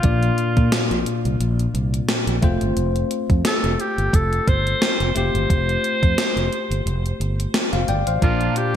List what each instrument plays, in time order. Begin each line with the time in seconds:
Already playing: alto saxophone F4
0.03 fretless electric bass A#1, tine electric piano A#2 A#3 D4 F4 D5, kick, closed hi-hat
0.23 closed hi-hat
0.38 closed hi-hat
0.57 fretless electric bass A#2, kick, closed hi-hat
0.72 snare, closed hi-hat
0.91 fretless electric bass A#1, closed hi-hat
1.06 closed hi-hat
1.25 fretless electric bass C2, closed hi-hat
1.40 fretless electric bass A#1, closed hi-hat
1.59 closed hi-hat
1.74 fretless electric bass C2, closed hi-hat
1.94 closed hi-hat
2.09 snare, closed hi-hat
2.27 fretless electric bass A#1, closed hi-hat
2.41 fretless electric bass F1, tine electric piano A3 C4 F4 C5, kick, closed hi-hat
2.61 fretless electric bass G1, closed hi-hat
2.77 fretless electric bass F1, closed hi-hat
2.96 closed hi-hat
3.11 closed hi-hat
3.30 fretless electric bass F2, kick, closed hi-hat
3.45 alto saxophone A4, snare, closed hi-hat
3.64 fretless electric bass F1, closed hi-hat
3.80 alto saxophone G4, closed hi-hat
3.98 fretless electric bass G1, closed hi-hat
4.13 fretless electric bass F1, alto saxophone A4, kick, closed hi-hat
4.33 closed hi-hat
4.47 fretless electric bass G1, alto saxophone C5, kick, closed hi-hat
4.67 closed hi-hat
4.82 snare, closed hi-hat
5.00 fretless electric bass F1, closed hi-hat
5.15 fretless electric bass F1, tine electric piano A3 C4 F4 G4, alto saxophone C5, closed hi-hat
5.35 fretless electric bass G1, closed hi-hat
5.50 fretless electric bass F1, kick, closed hi-hat
5.69 closed hi-hat
5.84 closed hi-hat
6.03 fretless electric bass F2, kick, closed hi-hat
6.18 snare, closed hi-hat
6.36 fretless electric bass F1, closed hi-hat
6.53 closed hi-hat
6.71 fretless electric bass G1, closed hi-hat
6.86 fretless electric bass F1, closed hi-hat
7.06 closed hi-hat
7.20 fretless electric bass G1, closed hi-hat
7.40 closed hi-hat
7.54 snare, closed hi-hat
7.73 fretless electric bass F1, tine electric piano C5 F5, closed hi-hat
7.88 fretless electric bass G1, tine electric piano D5 G5, closed hi-hat
8.07 fretless electric bass A1, tine electric piano C5 F5, closed hi-hat
8.21 fretless electric bass A#1, tine electric piano A#2 A#3 D4 F4 D5, clean electric guitar A#3 D4 F4 A#4, alto saxophone F4, kick, closed hi-hat
8.41 closed hi-hat
8.56 alto saxophone G4, muted clean electric guitar stroke, closed hi-hat